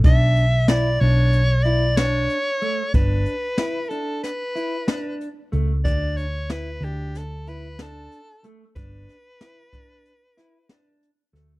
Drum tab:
HH |xxxxxxxxx|xxxxxxxxx|xxxxxxxxx|xxxxxxxxx|
SD |--o---o--|--o-o-o--|--o-o-o--|-oo--oo-o|
BD |o--------|o--------|o--------|o--o-----|